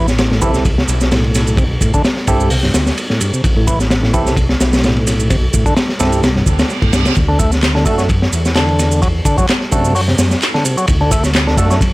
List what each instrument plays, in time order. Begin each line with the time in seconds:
Already playing: detuned saw bass A1
0.08 snare, shaker
0.18 snare, ride, shaker
0.31 tonewheel organ A2, snare
0.42 detuned saw bass C2, tonewheel organ E3, tine electric piano C4 E4 G4 A4, kick, ride, shaker
0.54 tonewheel organ C3, snare, shaker
0.65 kick, ride, shaker
0.78 snare
0.88 detuned saw bass B1, ride, shaker
1.01 snare, shaker
1.11 tonewheel organ A2, snare, ride, shaker
1.24 ride
1.35 snare, ride, shaker
1.47 shaker
1.57 tonewheel organ C3, kick, ride, shaker
1.81 tonewheel organ A2, kick, ride, shaker
1.94 tonewheel organ D3, kick, shaker
2.05 snare, ride, shaker
2.17 snare
2.27 detuned saw bass C2, tonewheel organ G2, tine electric piano C4 E4 G4 A4, kick, ride, shaker
2.40 shaker
2.50 tonewheel organ C3, open hi-hat, shaker
2.63 tonewheel organ G2, snare
2.74 detuned saw bass D2, snare, ride, shaker
2.87 snare, shaker
2.98 ride, shaker
3.10 tonewheel organ A2, snare
3.21 tonewheel organ G2, ride, shaker
3.33 tonewheel organ C3, shaker
3.44 detuned saw bass A1, kick, ride, shaker
3.57 tonewheel organ A2
3.67 tonewheel organ E3, kick, ride, shaker
3.80 snare, shaker
3.91 snare, ride, shaker
4.03 tonewheel organ A2, snare
4.14 detuned saw bass C2, tonewheel organ E3, tine electric piano C4 E4 G4 A4, kick, ride, shaker
4.26 tonewheel organ C3, snare, shaker
4.37 kick, ride, shaker
4.49 snare
4.60 detuned saw bass B1, snare, ride, shaker
4.73 snare, ride, shaker
4.78 snare, ride
4.83 tonewheel organ A2, snare, ride, shaker
4.97 ride
5.07 snare, ride, shaker
5.20 shaker
5.30 tonewheel organ C3, kick, ride, shaker
5.53 tonewheel organ A2, kick, ride, shaker
5.66 tonewheel organ D3, kick, shaker
5.77 snare, ride, shaker
5.89 snare
6.00 detuned saw bass C2, tonewheel organ G2, tine electric piano C4 E4 G4 A4, snare, ride, shaker
6.12 ride, shaker
6.23 tonewheel organ C3, snare, ride, reverse cymbal, shaker
6.36 tonewheel organ G2, snare
6.46 detuned saw bass D2, kick, ride, shaker
6.59 snare, ride, shaker
6.70 snare, shaker
6.82 tonewheel organ A2, kick, ride
6.93 detuned saw bass C2, tonewheel organ G2, snare, ride, shaker
7.05 tonewheel organ C3, snare, ride, shaker
7.15 detuned saw bass D2, kick, ride, shaker
7.29 tonewheel organ D3
7.39 tonewheel organ A3, kick, ride, shaker
7.52 snare, shaker
7.63 snare, clap, ride, shaker
7.75 tonewheel organ D3, snare
7.86 detuned saw bass F#2, tonewheel organ A3, tine electric piano A3 D4 F#4 A4, kick, ride, shaker
7.98 tonewheel organ F#3, snare, shaker
8.09 kick, ride, shaker
8.22 snare
8.32 detuned saw bass E2, ride, shaker
8.45 snare, shaker
8.55 tonewheel organ D3, snare, clap, ride, shaker
8.69 ride
8.79 snare, ride, shaker
8.92 shaker
9.02 tonewheel organ F#3, kick, ride, shaker
9.25 tonewheel organ D3, kick, ride, shaker
9.38 tonewheel organ F#3, kick, shaker
9.49 snare, clap, ride, shaker
9.61 snare
9.72 detuned saw bass F#2, tonewheel organ C3, tine electric piano A3 D4 F#4 A4, kick, ride, shaker
9.85 shaker
9.95 tonewheel organ F#3, open hi-hat, shaker
10.08 tonewheel organ C3, snare
10.18 detuned saw bass F#2, snare, ride, shaker
10.31 snare, shaker
10.42 clap, ride, shaker
10.54 tonewheel organ D3, snare
10.65 tonewheel organ C3, ride, shaker
10.77 tonewheel organ F#3, shaker
10.87 detuned saw bass D2, kick, ride, shaker
11.01 tonewheel organ D3
11.11 tonewheel organ A3, kick, ride, shaker
11.24 snare, shaker
11.34 snare, clap, ride, shaker
11.47 tonewheel organ D3, snare
11.57 detuned saw bass F#2, tonewheel organ A3, tine electric piano A3 D4 F#4 A4, kick, ride, shaker
11.71 tonewheel organ F#3, snare, shaker
11.81 kick, ride, shaker